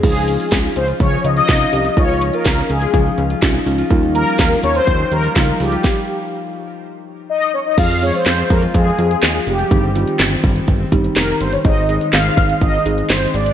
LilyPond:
<<
  \new Staff \with { instrumentName = "Analog polysynth" } { \time 4/4 \key f \minor \tempo 4 = 124 aes'4. c''8 des''8 ees''16 ees''4~ ees''16 | des''8. bes'8. aes'4. r4 | r8 bes'4 des''16 c''8. bes'4 g'8~ | g'4. r4. ees''8 des''16 ees''16 |
f''8 des''16 c''16 c''8 bes'8 aes'4. g'8~ | g'2~ g'8 r8 bes'8 c''16 des''16 | ees''4 f''4 ees''4 c''8 d''8 | }
  \new Staff \with { instrumentName = "Synth keys" } { \time 4/4 \key f \minor <des' ees' f'>4. r4. <des' ees' f'>8 <des' ees' g'>8 | <des' ees' f'>4. r4. <des' ees' f'>8 <des' ees' f'>8 | <g ees' f'>4. r4. <g ees' f'>8 <g ees' f'>8 | r1 |
<c' f' aes'>8 <c' f' aes'>4. r8 <c' f' aes'>4 r8 | <c' ees' g'>8 <c' ees' f'>4. r8 <c' ees' g'>4 r8 | <c' ees' aes'>8 <c' ees' aes'>4. r8 <c' ees' aes'>4 r8 | }
  \new Staff \with { instrumentName = "Harp" } { \time 4/4 \key f \minor f16 ees'16 des'16 f'16 r16 ees'16 des'16 f'16 f16 ees'16 des'16 f'16 f16 ees'16 des'16 f'16 | f16 ees'16 des'16 f'16 r16 ees'16 des'16 f'16 f16 ees'16 des'16 f'16 f16 ees'16 des'16 f'16 | f16 ees'16 g16 f'16 r16 ees'16 g16 f'16 f16 ees'16 g16 f'16 f16 ees'16 g16 f'16 | r1 |
f16 c'16 aes16 f'16 r16 c'16 aes16 f'16 r16 c'16 aes16 r16 f16 r16 aes16 r16 | ees16 c'16 g16 ees'16 r16 c'16 g16 ees'16 r16 c'16 g16 r16 ees16 r16 g16 r16 | ees16 c'16 aes16 ees'16 r16 c'16 aes16 ees'16 r16 c'16 aes16 r16 ees16 r16 aes16 r16 | }
  \new Staff \with { instrumentName = "Analog synth bass" } { \clef bass \time 4/4 \key f \minor des,4 des,8 des,8 des,8 des,8 c,8 c,8 | des,4 des,8 des,8 des,8 des,8 c,8 des,8 | ees,4 ees,8 ees,8 ees,8 ees,8 des,8 des,8 | r1 |
f,4 f,8 f,8 f,8 f,8 ees,8 f,,8 | g,,4 g,,8 g,,8 g,,8 g,,8 f,,8 g,,8 | aes,,4 aes,,8 aes,,8 aes,,8 aes,,8 g,,8 aes,,8 | }
  \new DrumStaff \with { instrumentName = "Drums" } \drummode { \time 4/4 <cymc bd>8 hh16 hh16 <hh bd sn>8 hh16 hh16 <hh bd>8 hh16 hh16 <hh bd sn>8 hh16 hh16 | <hh bd>8 hh16 hh16 <hh bd sn>8 hh16 hh16 <hh bd>8 hh16 hh16 <hh bd sn>8 hh16 hh16 | <hh bd>8 hh16 hh16 <hh bd sn>8 hh16 hh16 <hh bd>8 hh16 hh16 <hh bd sn>8 hho16 hh16 | <bd sn>4 r4 r4 r4 |
<cymc hh bd>8 hh16 hh16 <hc hh sn>8 <hh bd>16 hh16 <hh bd>8 hh16 hh16 <hc hh sn>8 hh16 hh16 | <hh bd>8 hh16 hh16 <hc hh sn>8 <hh bd>16 hh16 <hh bd>8 <hh bd>16 hh16 <hc hh sn>8 hh16 hh16 | <hh bd>8 hh16 hh16 <hc hh sn>8 <hh bd>16 hh16 <hh bd>8 hh16 hh16 <hc hh sn>8 hh16 hh16 | }
>>